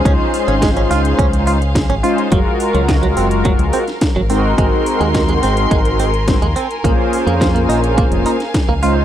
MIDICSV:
0, 0, Header, 1, 6, 480
1, 0, Start_track
1, 0, Key_signature, -5, "minor"
1, 0, Tempo, 566038
1, 45, Time_signature, 4, 2, 24, 8
1, 7673, End_track
2, 0, Start_track
2, 0, Title_t, "Violin section"
2, 0, Program_c, 0, 48
2, 0, Note_on_c, 0, 68, 82
2, 0, Note_on_c, 0, 77, 77
2, 0, Note_on_c, 0, 84, 75
2, 1930, Note_off_c, 0, 68, 0
2, 1944, Note_off_c, 0, 84, 0
2, 1968, Note_on_c, 0, 70, 85
2, 3610, Note_off_c, 0, 77, 0
2, 3642, Note_on_c, 0, 84, 97
2, 3643, Note_on_c, 0, 80, 76
2, 5782, Note_off_c, 0, 84, 0
2, 5801, Note_on_c, 0, 77, 77
2, 7453, Note_off_c, 0, 70, 0
2, 7485, Note_on_c, 0, 72, 87
2, 7673, Note_off_c, 0, 72, 0
2, 7673, Note_off_c, 0, 77, 0
2, 7673, Note_off_c, 0, 80, 0
2, 7673, End_track
3, 0, Start_track
3, 0, Title_t, "Analog polysynth"
3, 0, Program_c, 1, 90
3, 34, Note_on_c, 1, 56, 78
3, 38, Note_on_c, 1, 61, 75
3, 42, Note_on_c, 1, 63, 75
3, 45, Note_on_c, 1, 65, 72
3, 51, Note_on_c, 1, 72, 91
3, 1331, Note_off_c, 1, 56, 0
3, 1333, Note_off_c, 1, 61, 0
3, 1335, Note_off_c, 1, 63, 0
3, 1336, Note_off_c, 1, 65, 0
3, 1339, Note_off_c, 1, 72, 0
3, 1721, Note_on_c, 1, 56, 89
3, 1724, Note_on_c, 1, 61, 78
3, 1725, Note_on_c, 1, 63, 78
3, 1725, Note_on_c, 1, 65, 78
3, 1729, Note_on_c, 1, 72, 92
3, 1934, Note_off_c, 1, 56, 0
3, 1935, Note_off_c, 1, 61, 0
3, 1936, Note_off_c, 1, 63, 0
3, 1936, Note_off_c, 1, 65, 0
3, 1938, Note_off_c, 1, 72, 0
3, 1958, Note_on_c, 1, 56, 83
3, 1968, Note_on_c, 1, 65, 75
3, 1972, Note_on_c, 1, 66, 78
3, 1977, Note_on_c, 1, 70, 92
3, 3253, Note_off_c, 1, 56, 0
3, 3258, Note_off_c, 1, 65, 0
3, 3259, Note_off_c, 1, 66, 0
3, 3262, Note_off_c, 1, 70, 0
3, 3642, Note_on_c, 1, 56, 84
3, 3645, Note_on_c, 1, 60, 74
3, 3647, Note_on_c, 1, 66, 80
3, 3648, Note_on_c, 1, 63, 77
3, 3648, Note_on_c, 1, 70, 95
3, 3855, Note_off_c, 1, 56, 0
3, 3856, Note_off_c, 1, 60, 0
3, 3857, Note_off_c, 1, 66, 0
3, 3858, Note_off_c, 1, 63, 0
3, 3858, Note_off_c, 1, 70, 0
3, 3873, Note_on_c, 1, 56, 79
3, 3879, Note_on_c, 1, 60, 75
3, 3884, Note_on_c, 1, 63, 74
3, 3886, Note_on_c, 1, 66, 74
3, 3891, Note_on_c, 1, 70, 88
3, 5170, Note_off_c, 1, 56, 0
3, 5173, Note_off_c, 1, 60, 0
3, 5176, Note_off_c, 1, 63, 0
3, 5177, Note_off_c, 1, 66, 0
3, 5179, Note_off_c, 1, 70, 0
3, 5320, Note_on_c, 1, 56, 90
3, 5321, Note_on_c, 1, 60, 88
3, 5323, Note_on_c, 1, 63, 85
3, 5325, Note_on_c, 1, 66, 87
3, 5327, Note_on_c, 1, 72, 98
3, 5381, Note_off_c, 1, 56, 0
3, 5382, Note_off_c, 1, 60, 0
3, 5383, Note_off_c, 1, 63, 0
3, 5384, Note_off_c, 1, 66, 0
3, 5385, Note_off_c, 1, 72, 0
3, 5796, Note_on_c, 1, 58, 80
3, 5802, Note_on_c, 1, 61, 72
3, 5804, Note_on_c, 1, 65, 76
3, 5809, Note_on_c, 1, 68, 78
3, 5814, Note_on_c, 1, 72, 91
3, 7092, Note_off_c, 1, 58, 0
3, 7095, Note_off_c, 1, 61, 0
3, 7095, Note_off_c, 1, 65, 0
3, 7098, Note_off_c, 1, 68, 0
3, 7101, Note_off_c, 1, 72, 0
3, 7482, Note_on_c, 1, 56, 84
3, 7486, Note_on_c, 1, 61, 78
3, 7487, Note_on_c, 1, 63, 79
3, 7490, Note_on_c, 1, 65, 82
3, 7492, Note_on_c, 1, 72, 93
3, 7673, Note_off_c, 1, 56, 0
3, 7673, Note_off_c, 1, 61, 0
3, 7673, Note_off_c, 1, 63, 0
3, 7673, Note_off_c, 1, 65, 0
3, 7673, Note_off_c, 1, 72, 0
3, 7673, End_track
4, 0, Start_track
4, 0, Title_t, "Clean electric guitar"
4, 0, Program_c, 2, 27
4, 45, Note_on_c, 2, 61, 82
4, 105, Note_off_c, 2, 61, 0
4, 407, Note_on_c, 2, 61, 71
4, 466, Note_off_c, 2, 61, 0
4, 528, Note_on_c, 2, 56, 86
4, 587, Note_off_c, 2, 56, 0
4, 651, Note_on_c, 2, 61, 75
4, 684, Note_off_c, 2, 61, 0
4, 769, Note_on_c, 2, 65, 75
4, 857, Note_off_c, 2, 65, 0
4, 1006, Note_on_c, 2, 61, 82
4, 1066, Note_off_c, 2, 61, 0
4, 1248, Note_on_c, 2, 65, 79
4, 1282, Note_off_c, 2, 65, 0
4, 1608, Note_on_c, 2, 61, 80
4, 1643, Note_off_c, 2, 61, 0
4, 1724, Note_on_c, 2, 65, 73
4, 1815, Note_off_c, 2, 65, 0
4, 1965, Note_on_c, 2, 54, 83
4, 2025, Note_off_c, 2, 54, 0
4, 2329, Note_on_c, 2, 54, 72
4, 2387, Note_off_c, 2, 54, 0
4, 2446, Note_on_c, 2, 49, 84
4, 2505, Note_off_c, 2, 49, 0
4, 2567, Note_on_c, 2, 54, 74
4, 2602, Note_off_c, 2, 54, 0
4, 2687, Note_on_c, 2, 60, 77
4, 2776, Note_off_c, 2, 60, 0
4, 2929, Note_on_c, 2, 54, 86
4, 2987, Note_off_c, 2, 54, 0
4, 3167, Note_on_c, 2, 60, 83
4, 3202, Note_off_c, 2, 60, 0
4, 3528, Note_on_c, 2, 54, 81
4, 3562, Note_off_c, 2, 54, 0
4, 3645, Note_on_c, 2, 60, 72
4, 3735, Note_off_c, 2, 60, 0
4, 3888, Note_on_c, 2, 56, 85
4, 3946, Note_off_c, 2, 56, 0
4, 4245, Note_on_c, 2, 56, 74
4, 4305, Note_off_c, 2, 56, 0
4, 4364, Note_on_c, 2, 51, 83
4, 4424, Note_off_c, 2, 51, 0
4, 4486, Note_on_c, 2, 56, 78
4, 4521, Note_off_c, 2, 56, 0
4, 4606, Note_on_c, 2, 60, 76
4, 4696, Note_off_c, 2, 60, 0
4, 4843, Note_on_c, 2, 56, 80
4, 4904, Note_off_c, 2, 56, 0
4, 5085, Note_on_c, 2, 60, 78
4, 5121, Note_off_c, 2, 60, 0
4, 5446, Note_on_c, 2, 56, 78
4, 5481, Note_off_c, 2, 56, 0
4, 5562, Note_on_c, 2, 60, 76
4, 5654, Note_off_c, 2, 60, 0
4, 5802, Note_on_c, 2, 58, 82
4, 5863, Note_off_c, 2, 58, 0
4, 6163, Note_on_c, 2, 58, 71
4, 6224, Note_off_c, 2, 58, 0
4, 6284, Note_on_c, 2, 53, 81
4, 6345, Note_off_c, 2, 53, 0
4, 6401, Note_on_c, 2, 58, 72
4, 6439, Note_off_c, 2, 58, 0
4, 6521, Note_on_c, 2, 63, 77
4, 6613, Note_off_c, 2, 63, 0
4, 6762, Note_on_c, 2, 58, 81
4, 6823, Note_off_c, 2, 58, 0
4, 7005, Note_on_c, 2, 63, 79
4, 7041, Note_off_c, 2, 63, 0
4, 7366, Note_on_c, 2, 58, 77
4, 7402, Note_off_c, 2, 58, 0
4, 7485, Note_on_c, 2, 65, 74
4, 7575, Note_off_c, 2, 65, 0
4, 7673, End_track
5, 0, Start_track
5, 0, Title_t, "Fingered electric bass"
5, 0, Program_c, 3, 33
5, 44, Note_on_c, 3, 37, 101
5, 141, Note_off_c, 3, 37, 0
5, 405, Note_on_c, 3, 32, 91
5, 727, Note_off_c, 3, 32, 0
5, 766, Note_on_c, 3, 37, 83
5, 958, Note_off_c, 3, 37, 0
5, 1004, Note_on_c, 3, 37, 84
5, 1567, Note_off_c, 3, 37, 0
5, 1604, Note_on_c, 3, 32, 92
5, 1701, Note_off_c, 3, 32, 0
5, 1966, Note_on_c, 3, 30, 96
5, 2062, Note_off_c, 3, 30, 0
5, 2326, Note_on_c, 3, 37, 93
5, 2648, Note_off_c, 3, 37, 0
5, 2686, Note_on_c, 3, 30, 86
5, 3008, Note_off_c, 3, 30, 0
5, 3043, Note_on_c, 3, 37, 99
5, 3141, Note_off_c, 3, 37, 0
5, 3525, Note_on_c, 3, 32, 88
5, 3847, Note_off_c, 3, 32, 0
5, 3882, Note_on_c, 3, 32, 102
5, 3980, Note_off_c, 3, 32, 0
5, 4243, Note_on_c, 3, 39, 91
5, 4566, Note_off_c, 3, 39, 0
5, 4605, Note_on_c, 3, 32, 83
5, 4798, Note_off_c, 3, 32, 0
5, 4844, Note_on_c, 3, 32, 83
5, 5407, Note_off_c, 3, 32, 0
5, 5444, Note_on_c, 3, 39, 90
5, 5541, Note_off_c, 3, 39, 0
5, 5804, Note_on_c, 3, 34, 98
5, 5901, Note_off_c, 3, 34, 0
5, 6161, Note_on_c, 3, 41, 92
5, 6485, Note_off_c, 3, 41, 0
5, 6522, Note_on_c, 3, 34, 87
5, 6846, Note_off_c, 3, 34, 0
5, 6880, Note_on_c, 3, 29, 100
5, 6979, Note_off_c, 3, 29, 0
5, 7364, Note_on_c, 3, 37, 92
5, 7673, Note_off_c, 3, 37, 0
5, 7673, End_track
6, 0, Start_track
6, 0, Title_t, "Drums"
6, 45, Note_on_c, 9, 36, 127
6, 47, Note_on_c, 9, 42, 74
6, 129, Note_off_c, 9, 36, 0
6, 132, Note_off_c, 9, 42, 0
6, 287, Note_on_c, 9, 46, 111
6, 372, Note_off_c, 9, 46, 0
6, 408, Note_on_c, 9, 42, 39
6, 493, Note_off_c, 9, 42, 0
6, 525, Note_on_c, 9, 36, 108
6, 528, Note_on_c, 9, 42, 79
6, 531, Note_on_c, 9, 38, 125
6, 610, Note_off_c, 9, 36, 0
6, 613, Note_off_c, 9, 42, 0
6, 616, Note_off_c, 9, 38, 0
6, 649, Note_on_c, 9, 42, 37
6, 734, Note_off_c, 9, 42, 0
6, 770, Note_on_c, 9, 46, 108
6, 772, Note_on_c, 9, 38, 40
6, 854, Note_off_c, 9, 46, 0
6, 857, Note_off_c, 9, 38, 0
6, 890, Note_on_c, 9, 42, 53
6, 975, Note_off_c, 9, 42, 0
6, 1005, Note_on_c, 9, 36, 119
6, 1011, Note_on_c, 9, 42, 79
6, 1090, Note_off_c, 9, 36, 0
6, 1095, Note_off_c, 9, 42, 0
6, 1131, Note_on_c, 9, 42, 53
6, 1216, Note_off_c, 9, 42, 0
6, 1247, Note_on_c, 9, 46, 104
6, 1332, Note_off_c, 9, 46, 0
6, 1372, Note_on_c, 9, 42, 38
6, 1457, Note_off_c, 9, 42, 0
6, 1486, Note_on_c, 9, 36, 114
6, 1489, Note_on_c, 9, 42, 82
6, 1491, Note_on_c, 9, 38, 127
6, 1571, Note_off_c, 9, 36, 0
6, 1574, Note_off_c, 9, 42, 0
6, 1576, Note_off_c, 9, 38, 0
6, 1609, Note_on_c, 9, 42, 36
6, 1694, Note_off_c, 9, 42, 0
6, 1728, Note_on_c, 9, 46, 104
6, 1813, Note_off_c, 9, 46, 0
6, 1850, Note_on_c, 9, 42, 39
6, 1935, Note_off_c, 9, 42, 0
6, 1965, Note_on_c, 9, 42, 76
6, 1966, Note_on_c, 9, 36, 127
6, 2050, Note_off_c, 9, 42, 0
6, 2051, Note_off_c, 9, 36, 0
6, 2205, Note_on_c, 9, 46, 113
6, 2290, Note_off_c, 9, 46, 0
6, 2329, Note_on_c, 9, 42, 36
6, 2413, Note_off_c, 9, 42, 0
6, 2446, Note_on_c, 9, 36, 112
6, 2447, Note_on_c, 9, 42, 78
6, 2450, Note_on_c, 9, 38, 119
6, 2531, Note_off_c, 9, 36, 0
6, 2532, Note_off_c, 9, 42, 0
6, 2535, Note_off_c, 9, 38, 0
6, 2568, Note_on_c, 9, 42, 35
6, 2653, Note_off_c, 9, 42, 0
6, 2686, Note_on_c, 9, 46, 114
6, 2771, Note_off_c, 9, 46, 0
6, 2807, Note_on_c, 9, 42, 52
6, 2892, Note_off_c, 9, 42, 0
6, 2925, Note_on_c, 9, 42, 74
6, 2926, Note_on_c, 9, 36, 124
6, 3010, Note_off_c, 9, 42, 0
6, 3011, Note_off_c, 9, 36, 0
6, 3045, Note_on_c, 9, 42, 50
6, 3130, Note_off_c, 9, 42, 0
6, 3163, Note_on_c, 9, 46, 112
6, 3248, Note_off_c, 9, 46, 0
6, 3287, Note_on_c, 9, 42, 34
6, 3289, Note_on_c, 9, 38, 36
6, 3371, Note_off_c, 9, 42, 0
6, 3374, Note_off_c, 9, 38, 0
6, 3403, Note_on_c, 9, 42, 78
6, 3405, Note_on_c, 9, 36, 111
6, 3406, Note_on_c, 9, 38, 127
6, 3488, Note_off_c, 9, 42, 0
6, 3490, Note_off_c, 9, 36, 0
6, 3490, Note_off_c, 9, 38, 0
6, 3643, Note_on_c, 9, 46, 113
6, 3728, Note_off_c, 9, 46, 0
6, 3884, Note_on_c, 9, 36, 121
6, 3886, Note_on_c, 9, 42, 72
6, 3969, Note_off_c, 9, 36, 0
6, 3971, Note_off_c, 9, 42, 0
6, 4124, Note_on_c, 9, 46, 111
6, 4209, Note_off_c, 9, 46, 0
6, 4247, Note_on_c, 9, 42, 35
6, 4331, Note_off_c, 9, 42, 0
6, 4363, Note_on_c, 9, 36, 109
6, 4363, Note_on_c, 9, 42, 75
6, 4366, Note_on_c, 9, 38, 114
6, 4448, Note_off_c, 9, 36, 0
6, 4448, Note_off_c, 9, 42, 0
6, 4451, Note_off_c, 9, 38, 0
6, 4483, Note_on_c, 9, 42, 35
6, 4568, Note_off_c, 9, 42, 0
6, 4604, Note_on_c, 9, 46, 109
6, 4606, Note_on_c, 9, 38, 36
6, 4688, Note_off_c, 9, 46, 0
6, 4691, Note_off_c, 9, 38, 0
6, 4723, Note_on_c, 9, 42, 51
6, 4807, Note_off_c, 9, 42, 0
6, 4843, Note_on_c, 9, 36, 127
6, 4844, Note_on_c, 9, 42, 74
6, 4927, Note_off_c, 9, 36, 0
6, 4929, Note_off_c, 9, 42, 0
6, 4963, Note_on_c, 9, 42, 49
6, 5047, Note_off_c, 9, 42, 0
6, 5084, Note_on_c, 9, 46, 111
6, 5168, Note_off_c, 9, 46, 0
6, 5204, Note_on_c, 9, 42, 34
6, 5289, Note_off_c, 9, 42, 0
6, 5322, Note_on_c, 9, 42, 73
6, 5323, Note_on_c, 9, 36, 110
6, 5325, Note_on_c, 9, 38, 119
6, 5407, Note_off_c, 9, 42, 0
6, 5408, Note_off_c, 9, 36, 0
6, 5410, Note_off_c, 9, 38, 0
6, 5446, Note_on_c, 9, 42, 35
6, 5531, Note_off_c, 9, 42, 0
6, 5564, Note_on_c, 9, 46, 107
6, 5648, Note_off_c, 9, 46, 0
6, 5687, Note_on_c, 9, 42, 35
6, 5772, Note_off_c, 9, 42, 0
6, 5803, Note_on_c, 9, 36, 123
6, 5807, Note_on_c, 9, 42, 73
6, 5888, Note_off_c, 9, 36, 0
6, 5891, Note_off_c, 9, 42, 0
6, 6046, Note_on_c, 9, 46, 104
6, 6131, Note_off_c, 9, 46, 0
6, 6169, Note_on_c, 9, 42, 35
6, 6253, Note_off_c, 9, 42, 0
6, 6284, Note_on_c, 9, 36, 108
6, 6289, Note_on_c, 9, 42, 78
6, 6291, Note_on_c, 9, 38, 110
6, 6368, Note_off_c, 9, 36, 0
6, 6374, Note_off_c, 9, 42, 0
6, 6376, Note_off_c, 9, 38, 0
6, 6409, Note_on_c, 9, 42, 35
6, 6494, Note_off_c, 9, 42, 0
6, 6526, Note_on_c, 9, 46, 103
6, 6611, Note_off_c, 9, 46, 0
6, 6645, Note_on_c, 9, 42, 50
6, 6730, Note_off_c, 9, 42, 0
6, 6765, Note_on_c, 9, 36, 116
6, 6765, Note_on_c, 9, 42, 78
6, 6850, Note_off_c, 9, 36, 0
6, 6850, Note_off_c, 9, 42, 0
6, 6883, Note_on_c, 9, 42, 49
6, 6968, Note_off_c, 9, 42, 0
6, 7002, Note_on_c, 9, 46, 109
6, 7087, Note_off_c, 9, 46, 0
6, 7125, Note_on_c, 9, 42, 36
6, 7127, Note_on_c, 9, 38, 35
6, 7209, Note_off_c, 9, 42, 0
6, 7212, Note_off_c, 9, 38, 0
6, 7245, Note_on_c, 9, 36, 103
6, 7245, Note_on_c, 9, 42, 79
6, 7248, Note_on_c, 9, 38, 112
6, 7330, Note_off_c, 9, 36, 0
6, 7330, Note_off_c, 9, 42, 0
6, 7332, Note_off_c, 9, 38, 0
6, 7485, Note_on_c, 9, 46, 99
6, 7570, Note_off_c, 9, 46, 0
6, 7673, End_track
0, 0, End_of_file